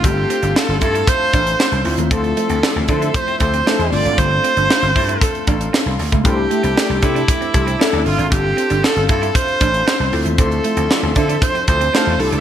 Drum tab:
HH |x-xx--xxx-xx-xox|xxxx--xxxxxx-xox|x-xx-xoxxxxx--ox|x-xx--xxxxxx--ox|
SD |----o-------o---|----o-------o---|----o-------o---|----o-------o---|
BD |o-----o-o-o-----|o-----o-o-o-----|o-----o-o-o----o|o-----o-o-o-----|

HH |x-xx-xxxxxxx--ox|xxxx--xxxxxx--ox|
SD |----o-------o---|----o-------o---|
BD |o-----o-o-o-----|o-----o-o-o-----|